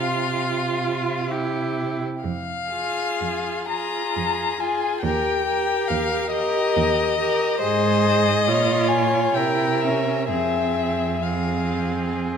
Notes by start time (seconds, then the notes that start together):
Already playing: C3 F4 F5
1.30 E4 G4
2.24 F2 F5
2.70 F4 G#4
3.21 F2
3.70 F4 G#4 A#5
4.16 F2
4.60 F4 G#4 G#5
5.02 D#2 G4 A#4 G5
5.46 G4 A#4
5.88 D#2 F5
6.32 G4 A#4 D#5
6.76 D#2
7.19 G4 A#4
7.61 G#2 G#4 C5 D#5
8.48 A#2 F4 C#5
8.89 G#5
9.34 C3 E4 A#4 G5
9.81 C#4 E5
10.29 F2 C4 G#4 E5
11.22 C4 G#4 F5